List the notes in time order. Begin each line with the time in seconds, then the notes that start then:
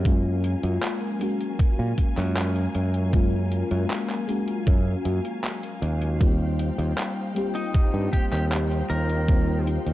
Already playing: F#2
0.04 F#3 G#3 A#3 C#4 F4 A#4 F5 G#5, kick, closed hi-hat
0.44 closed hi-hat
0.63 F#2, closed hi-hat
0.82 clap, closed hi-hat
1.19 G#3 A#3 C#4 F#4, closed hi-hat
1.41 closed hi-hat
1.59 muted fingered electric bass stroke, kick, closed hi-hat
1.79 A#2
1.98 kick, closed hi-hat
2.17 F#2, clap, closed hi-hat
2.37 clap, closed hi-hat
2.56 closed hi-hat
2.75 F#2, closed hi-hat
2.94 closed hi-hat
3.12 G#3 A#3 C#4 F4, kick, closed hi-hat
3.52 closed hi-hat
3.71 F#2, closed hi-hat
3.90 clap, closed hi-hat
4.09 clap, closed hi-hat
4.27 G#3 A#3 C#4 F#4, closed hi-hat
4.48 closed hi-hat
4.67 F#2, kick, closed hi-hat
5.05 F#2, closed hi-hat
5.25 closed hi-hat
5.44 clap, closed hi-hat
5.63 closed hi-hat
5.82 D#2, closed hi-hat
6.02 closed hi-hat
6.19 G3 A#3 C4 D#4 F4 C5 G5, kick, closed hi-hat
6.59 closed hi-hat
6.78 D#2, closed hi-hat
6.98 clap, closed hi-hat
7.34 G3 A#3 C4 G4, closed hi-hat
7.55 D#4, closed hi-hat
7.75 muted fingered electric bass stroke, kick, closed hi-hat
7.94 G2
8.13 G4, kick, closed hi-hat
8.32 D#2 G4, clap, closed hi-hat
8.52 clap, closed hi-hat
8.71 closed hi-hat
8.89 D#2 A#4, closed hi-hat
9.09 closed hi-hat
9.27 G3 A#3 C4 F4, kick, closed hi-hat
9.67 closed hi-hat
9.86 D#2, closed hi-hat